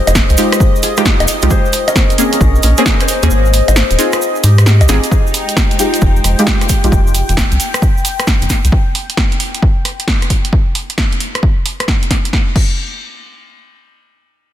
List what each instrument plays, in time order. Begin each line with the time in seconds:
Already playing: harp A#4, analog synth pad D#5
0.07 analog synth bass F1, harp G#4 C5, closed hi-hat, high bongo, shaker
0.15 kick, snare, shaker
0.29 analog synth bass C2, closed hi-hat, shaker
0.37 synth stab G#3 D#4 F4 G4, open hi-hat, shaker
0.52 cross-stick, closed hi-hat, shaker
0.60 kick, shaker
0.76 shaker
0.83 harp F4 G#4, open hi-hat, shaker
0.97 synth stab G#3 D#4 F4 G4, cross-stick, closed hi-hat, shaker
1.05 kick, snare, shaker
1.20 analog synth bass F1, closed hi-hat, high bongo, shaker
1.28 open hi-hat, shaker
1.42 analog synth bass C2, synth stab G#3 D#4 F4 G4, closed hi-hat, shaker
1.50 harp G#4 C5, kick, shaker
1.65 shaker
1.73 open hi-hat, shaker
1.87 harp C#4 A#4, closed hi-hat, high bongo, shaker
1.96 kick, snare, shaker
2.10 closed hi-hat, shaker
2.18 synth stab A#3 C4 C#4 G#4, open hi-hat, shaker
2.33 harp C#4 A#4, closed hi-hat, shaker
2.41 analog synth bass A#1, kick, shaker
2.55 shaker
2.63 analog synth bass A#1, harp C#4 A#4, open hi-hat, shaker
2.77 synth stab A#3 C4 C#4 G#4, closed hi-hat, shaker
2.86 kick, snare, shaker
3.00 harp G#4 C5, cross-stick, closed hi-hat, shaker
3.08 open hi-hat, shaker
3.23 analog synth bass D#2, synth stab A#3 C4 C#4 G#4, closed hi-hat, shaker
3.30 analog synth bass G#1, harp G#4 C5, shaker
3.45 shaker
3.54 open hi-hat, shaker
3.68 analog synth bass G#1, harp G#4 C5, closed hi-hat, high bongo, shaker
3.76 snare, shaker
3.91 analog synth bass D#1, closed hi-hat, shaker
3.98 synth stab C4 D#4 F4 G#4, open hi-hat, shaker
4.12 cross-stick, closed hi-hat, shaker
4.22 shaker
4.35 shaker
4.44 analog synth bass G#2, harp D#4 G4, open hi-hat, shaker
4.58 cross-stick, closed hi-hat, shaker
4.66 snare, shaker
4.81 analog synth bass C2, closed hi-hat, high bongo, shaker
4.89 analog synth bass G#1, synth stab C4 D#4 F4 G#4, snare, open hi-hat, shaker
5.04 closed hi-hat, shaker
5.11 string section D#4, analog synth pad G5, kick, shaker
5.27 shaker
5.34 open hi-hat, shaker
5.40 string section G#3
5.49 closed hi-hat, shaker
5.57 string section C5, kick, snare, shaker
5.71 closed hi-hat, shaker
5.79 synth stab G#3 D#4 F4 G4, open hi-hat, shaker
5.94 closed hi-hat, shaker
6.01 analog synth bass F1, kick, shaker
6.16 shaker
6.24 analog synth bass F1, cross-stick, open hi-hat, shaker
6.39 synth stab G#3 D#4 F4 G4, closed hi-hat, shaker
6.47 kick, snare, shaker
6.61 cross-stick, closed hi-hat, shaker
6.69 kick, open hi-hat, shaker
6.84 analog synth bass A#1, synth stab G#3 D#4 F4 G4, closed hi-hat, shaker
6.92 analog synth bass F1, kick, shaker
7.07 shaker
7.15 open hi-hat, shaker
7.29 analog synth bass F1, closed hi-hat, shaker
7.37 kick, snare, shaker
7.52 analog synth bass C2, closed hi-hat, shaker
7.60 open hi-hat, shaker
7.74 cross-stick, closed hi-hat, shaker
7.82 kick, shaker
7.97 shaker
8.05 open hi-hat, shaker
8.20 cross-stick, closed hi-hat, shaker
8.27 kick, snare, shaker
8.42 analog synth bass F1, closed hi-hat, shaker
8.50 kick, snare, open hi-hat, shaker
8.65 analog synth bass C2, closed hi-hat, shaker
8.72 kick
8.95 open hi-hat
9.10 closed hi-hat
9.17 kick, snare
9.32 closed hi-hat
9.40 open hi-hat
9.55 closed hi-hat
9.62 kick
9.85 cross-stick, open hi-hat
10.00 closed hi-hat
10.08 kick, snare
10.22 cross-stick, closed hi-hat
10.30 kick, open hi-hat
10.45 closed hi-hat
10.53 kick
10.75 open hi-hat
10.90 closed hi-hat
10.98 kick, snare
11.12 closed hi-hat
11.20 open hi-hat
11.35 cross-stick, closed hi-hat
11.43 kick
11.66 open hi-hat
11.80 cross-stick, closed hi-hat
11.88 kick, snare
12.03 closed hi-hat
12.11 kick, snare, open hi-hat
12.25 closed hi-hat
12.33 kick, snare
12.56 kick, crash